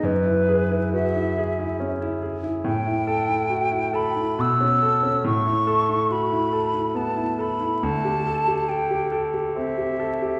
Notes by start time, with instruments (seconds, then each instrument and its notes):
0.03 grand piano F#2, flute B4
0.25 grand piano E4
0.49 grand piano G#4
0.71 grand piano E4
0.93 grand piano F#4, flute E5
1.16 grand piano E4
1.38 grand piano G#4
1.59 grand piano E4
1.80 grand piano C#4
2.02 grand piano E4
2.22 grand piano G#4
2.43 grand piano E4
2.64 grand piano A2, flute G5
2.86 grand piano E4
3.07 grand piano A4
3.28 grand piano E4
3.50 grand piano F#4
3.71 grand piano E4
3.93 grand piano A4, flute B5
4.16 grand piano E4
4.39 grand piano B2, flute E6
4.61 grand piano C#4
4.82 grand piano A4
5.03 grand piano C#4
5.24 grand piano A2, flute C#6
5.45 grand piano E4
5.67 grand piano A4
5.89 grand piano E4
6.10 grand piano F#4, flute B5
6.32 grand piano E4
6.53 grand piano A4
6.74 grand piano E4
6.95 grand piano B3, flute A5
7.17 grand piano E4
7.39 grand piano A4, flute B5
7.61 grand piano E4
7.83 grand piano D2, flute A5
8.05 grand piano G4
8.26 grand piano A4
8.48 grand piano G4
8.69 grand piano A4, flute G5
8.91 grand piano G4
9.12 grand piano A4
9.34 grand piano G4
9.56 grand piano C4, flute E5
9.78 grand piano G4
9.99 grand piano A4
10.22 grand piano G4